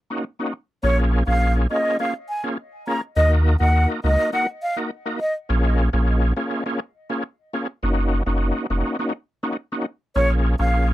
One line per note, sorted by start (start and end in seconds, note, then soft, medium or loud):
0.10 0.24 A#3 medium
0.10 0.24 C#4 medium
0.10 0.25 D#4 medium
0.10 0.25 F#4 medium
0.39 0.53 A#3 medium
0.39 0.54 C#4 medium
0.39 0.54 D#4 medium
0.39 0.54 F#4 medium
0.83 1.23 A#1 loud
0.83 1.23 A#3 medium
0.83 1.23 C#4 medium
0.83 1.24 F4 medium
0.83 1.24 G#4 loud
0.83 0.96 C#5 medium
1.27 1.67 A#1 loud
1.27 1.67 A#3 medium
1.27 1.67 C#4 medium
1.27 1.67 F4 medium
1.27 1.67 G#4 medium
1.27 1.53 F5 medium
1.70 1.97 A#3 medium
1.70 1.97 C#4 medium
1.70 1.98 F4 medium
1.70 1.98 G#4 medium
1.70 1.97 D#5 medium
1.99 2.14 A#3 medium
1.99 2.14 C#4 medium
1.99 2.14 F4 medium
1.99 2.14 G#4 loud
1.99 2.13 F5 medium
2.29 2.42 G#5 medium
2.43 2.57 A#3 medium
2.43 2.57 C#4 medium
2.43 2.58 F4 medium
2.43 2.58 G#4 medium
2.87 3.01 A#3 medium
2.87 3.01 C#4 medium
2.87 3.01 F4 medium
2.87 3.01 G#4 medium
2.87 3.00 A#5 medium
3.16 3.56 D#2 loud
3.16 3.57 A#3 medium
3.16 3.57 D#4 medium
3.16 3.57 F#4 medium
3.16 3.57 A#4 loud
3.16 3.29 D#5 loud
3.60 3.86 D#2 medium
3.60 4.00 A#3 medium
3.60 4.00 D#4 medium
3.60 4.00 F#4 medium
3.60 4.00 A#4 medium
3.60 3.86 F#5 medium
4.04 4.17 C#2 medium
4.04 4.31 A#3 medium
4.04 4.31 D#4 medium
4.04 4.31 F#4 medium
4.04 4.31 A#4 medium
4.04 4.29 D#5 medium
4.33 4.47 A#3 medium
4.33 4.47 D#4 medium
4.33 4.47 F#4 medium
4.33 4.47 A#4 loud
4.33 4.46 F#5 medium
4.63 4.75 F5 medium
4.76 4.90 A#3 medium
4.76 4.91 D#4 medium
4.76 4.91 F#4 medium
4.76 4.91 A#4 medium
5.06 5.20 A#3 medium
5.06 5.20 D#4 medium
5.06 5.20 F#4 medium
5.06 5.20 A#4 medium
5.21 5.33 D#5 medium
5.49 5.89 A#1 loud
5.49 5.89 A#3 medium
5.49 5.90 C#4 medium
5.49 5.90 F4 medium
5.49 5.90 G#4 loud
5.93 6.33 A#1 loud
5.93 6.33 A#3 medium
5.93 6.33 C#4 medium
5.93 6.33 F4 medium
5.93 6.34 G#4 medium
6.37 6.64 A#3 medium
6.37 6.64 C#4 medium
6.37 6.64 F4 medium
6.37 6.64 G#4 medium
6.66 6.80 A#3 medium
6.66 6.80 C#4 medium
6.66 6.80 F4 medium
6.66 6.80 G#4 loud
7.10 7.24 A#3 medium
7.10 7.24 C#4 medium
7.10 7.24 F4 medium
7.10 7.24 G#4 medium
7.53 7.67 A#3 medium
7.53 7.67 C#4 medium
7.53 7.68 F4 medium
7.53 7.68 G#4 medium
7.83 8.22 F#1 loud
7.83 8.23 A#3 medium
7.83 8.23 C#4 medium
7.83 8.23 D#4 medium
7.83 8.23 F#4 loud
8.26 8.52 F#1 loud
8.26 8.66 A#3 medium
8.26 8.67 C#4 medium
8.26 8.67 D#4 medium
8.26 8.67 F#4 medium
8.70 8.83 F1 medium
8.70 8.97 A#3 medium
8.70 8.97 C#4 medium
8.70 8.97 D#4 medium
8.70 8.97 F#4 medium
8.99 9.13 A#3 medium
8.99 9.13 C#4 medium
8.99 9.13 D#4 medium
8.99 9.13 F#4 loud
9.43 9.57 A#3 medium
9.43 9.57 C#4 medium
9.43 9.57 D#4 medium
9.43 9.57 F#4 medium
9.72 9.86 A#3 medium
9.72 9.86 C#4 medium
9.72 9.86 D#4 medium
9.72 9.86 F#4 medium
10.16 10.55 A#1 loud
10.16 10.56 A#3 medium
10.16 10.56 C#4 medium
10.16 10.56 F4 medium
10.16 10.56 G#4 loud
10.16 10.29 C#5 loud
10.59 10.94 A#1 loud
10.59 10.94 A#3 medium
10.59 10.94 C#4 medium
10.59 10.94 F4 medium
10.59 10.94 G#4 medium
10.59 10.85 F5 medium